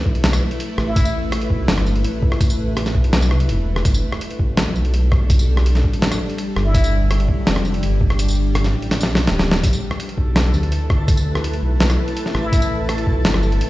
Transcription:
Already playing: A3 E4 B4
0.06 B1, kick
0.15 closed hi-hat
0.24 snare, closed hi-hat
0.33 cross-stick, tambourine
0.51 closed hi-hat
0.60 closed hi-hat
0.78 A1, cross-stick
0.87 E4
0.96 kick, closed hi-hat, tambourine
1.05 tambourine
1.32 cross-stick, closed hi-hat
1.41 closed hi-hat
1.50 B1, kick
1.68 G1, snare, closed hi-hat
1.78 cross-stick
1.86 tambourine
1.96 closed hi-hat
2.04 A1, closed hi-hat
2.22 kick
2.32 cross-stick
2.41 kick, closed hi-hat, tambourine
2.50 tambourine
2.77 cross-stick, closed hi-hat
2.86 snare, closed hi-hat
2.95 B1, kick
3.04 closed hi-hat
3.13 snare, closed hi-hat
3.22 tambourine
3.31 C2, cross-stick
3.40 closed hi-hat
3.49 E1, closed hi-hat
3.76 cross-stick
3.85 G1 G3 D4 A4, kick, closed hi-hat, tambourine
3.94 tambourine
4.12 cross-stick
4.21 closed hi-hat
4.31 closed hi-hat
4.39 A1, kick
4.57 cross-stick, snare, closed hi-hat
4.76 B1, tambourine
4.85 closed hi-hat
4.94 closed hi-hat
5.12 kick, cross-stick
5.30 kick, closed hi-hat, tambourine
5.39 tambourine
5.57 cross-stick
5.66 closed hi-hat
5.75 snare, closed hi-hat
5.84 A1, kick
5.93 closed hi-hat
6.02 snare, closed hi-hat
6.12 cross-stick, tambourine
6.30 closed hi-hat
6.38 closed hi-hat
6.56 G1, cross-stick
6.66 E4
6.74 G4, kick, closed hi-hat, tambourine
6.84 tambourine
7.11 cross-stick, closed hi-hat
7.20 closed hi-hat
7.29 A1, kick
7.47 F1, snare, closed hi-hat
7.56 cross-stick
7.65 tambourine
7.74 closed hi-hat
7.83 G1, closed hi-hat
8.01 kick
8.10 cross-stick
8.19 closed hi-hat, tambourine
8.28 tambourine
8.31 tambourine
8.33 tambourine
8.35 tambourine
8.55 cross-stick, closed hi-hat
8.64 snare, closed hi-hat
8.73 A1
8.82 closed hi-hat
8.91 snare, closed hi-hat
9.01 snare, tambourine
9.09 B1
9.15 snare, closed hi-hat
9.27 D1, snare, closed hi-hat
9.39 snare
9.51 snare
9.63 A1 A3 E4 A4 B4, kick, closed hi-hat, tambourine
9.73 tambourine
9.91 cross-stick
10.00 closed hi-hat
10.09 closed hi-hat
10.18 B1, kick
10.36 cross-stick, snare, closed hi-hat
10.54 D2, tambourine
10.63 closed hi-hat
10.72 closed hi-hat
10.90 kick, cross-stick
11.08 kick, closed hi-hat, tambourine
11.17 tambourine
11.35 cross-stick
11.44 closed hi-hat
11.54 closed hi-hat
11.62 B1
11.80 snare, closed hi-hat
11.90 cross-stick, tambourine
12.08 closed hi-hat
12.17 closed hi-hat
12.26 snare
12.35 A1, cross-stick
12.44 E4
12.53 kick, closed hi-hat, tambourine
12.62 tambourine
12.89 cross-stick, closed hi-hat
12.98 closed hi-hat
13.07 B1, kick
13.25 G1, snare, closed hi-hat
13.34 cross-stick
13.43 tambourine
13.52 closed hi-hat
13.61 A1, closed hi-hat

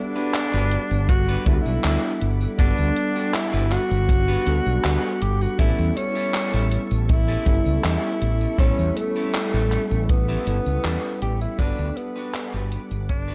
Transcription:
Already playing: G3 B3 D4 A4 F#5 B5 D6
0.16 D4 F#4 G4 B4, tambourine
0.34 clap, closed hi-hat, tambourine
0.53 G1 D4 F#4 G4 B4, tambourine
0.71 closed hi-hat
0.91 G1, tambourine
1.09 F#4, kick, closed hi-hat, tambourine
1.28 D4 F#4 G4 B4, tambourine
1.45 D2 G3 B3 D4 E4 A4 F#5, kick, closed hi-hat
1.54 F#4
1.62 E4
1.66 B1, tambourine
1.84 D2 D4 E4 F#4 G4 B4, clap, closed hi-hat, tambourine
2.03 tambourine
2.21 G1, closed hi-hat
2.41 muted clean electric guitar stroke, tambourine
2.57 G1 G3 B3 D4 F#4 G4 A4 B4 F#5, kick, closed hi-hat, tambourine
2.78 D2, tambourine
2.96 closed hi-hat
3.16 D4 F#4 G4 A4, tambourine
3.34 E4, clap, closed hi-hat, tambourine
3.53 G1 D4 F#4 G4 B4, tambourine
3.72 F#4, clap, closed hi-hat
3.91 G1, tambourine
4.09 kick, closed hi-hat, tambourine
4.28 D4 F#4 G4 B4, tambourine
4.45 D2 G3 B3 D4 A4 F#5, closed hi-hat
4.66 B1, tambourine
4.83 D2 D4 F#4 G4 B4, clap, closed hi-hat, tambourine
5.04 tambourine
5.21 G1 G4, closed hi-hat
5.41 F#4, muted clean electric guitar stroke, tambourine
5.58 A1 G3 B3 C#4 E4 G4 A4 E5 A5 C#6, kick, closed hi-hat, tambourine
5.79 E2, tambourine
5.97 C#4, closed hi-hat
6.15 C#4 E4 G4 A4, tambourine
6.34 clap, closed hi-hat, tambourine
6.53 A1 C#4 E4 G4 A4, tambourine
6.71 closed hi-hat
6.91 A1, tambourine
7.09 E4, muted clean electric guitar stroke, kick, closed hi-hat, tambourine
7.28 C#4 E4 G4 A4, tambourine
7.45 G1 G3 B3 C#4 E4 A4, kick, closed hi-hat
7.66 C#2, tambourine
7.84 E2 C#4 E4 G4 A4, clap, closed hi-hat, tambourine
8.04 tambourine
8.22 A1, closed hi-hat
8.41 muted clean electric guitar stroke, tambourine
8.58 A1 G3 B3 C#4 E4 G4 A4 B5, kick, closed hi-hat, tambourine
8.79 E2, tambourine
8.97 A3, closed hi-hat
9.16 C#4 E4 G4 A4, tambourine
9.34 clap, closed hi-hat, tambourine
9.53 A1 C#4 E4 G4 A4, tambourine
9.72 clap, closed hi-hat
9.91 A1, tambourine
10.09 B3, muted clean electric guitar stroke, kick, closed hi-hat, tambourine
10.28 C#4 E4 G4 A4, tambourine
10.45 G1 G3 B3 C#4 E4 A4, closed hi-hat
10.66 C#2, tambourine
10.84 E2 C#4 E4 G4 A4, clap, closed hi-hat, tambourine
11.04 tambourine
11.22 A1 G4, closed hi-hat
11.41 E4, muted clean electric guitar stroke, tambourine
11.58 G1 G3 B3 D4 F#4 G4 A4 B4 F#5 D6, kick, closed hi-hat, tambourine
11.79 D2, tambourine
11.97 B3, closed hi-hat
12.16 D4 F#4 G4 B4, tambourine
12.34 clap, closed hi-hat, tambourine
12.53 G1 D4 F#4 G4 B4, tambourine
12.72 closed hi-hat
12.91 G1, tambourine
13.09 D4, kick, closed hi-hat, tambourine
13.28 D4 F#4 G4 B4, tambourine

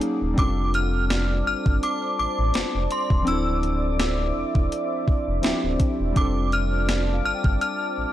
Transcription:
Already playing: F#3 A#3 C#4 D#4 G#4
0.01 closed hi-hat
0.22 D#1
0.34 G3 C4
0.38 F1 D4 F4 C5 D5 A5 D6, kick, closed hi-hat
0.42 A4
0.74 F6, closed hi-hat
1.10 D5, snare, closed hi-hat
1.47 G1 F6
1.66 G1, kick
1.83 D6, closed hi-hat
2.19 A1 D6
2.39 A1
2.54 F1, snare, closed hi-hat
2.75 F1
2.91 C6, closed hi-hat
3.10 E1, kick
3.23 F3 C4
3.27 D1 D4 E4 E5 E6, closed hi-hat
3.32 A4
3.63 closed hi-hat
4.00 snare, closed hi-hat
4.36 E1
4.55 E1, kick
4.72 closed hi-hat
5.08 F1, kick
5.28 F1
5.42 D1 F3 C4 D4 E4, snare, closed hi-hat
5.46 G4
5.64 D1
5.80 kick, closed hi-hat
6.00 E1
6.12 G3 C4
6.16 F1 D4 F4 A5 D6, kick, closed hi-hat
6.21 A4
6.52 F6, closed hi-hat
6.89 D5, snare, closed hi-hat
7.13 F5
7.25 G1 F6
7.34 G5
7.44 G1, kick
7.61 F6, closed hi-hat
7.98 A1

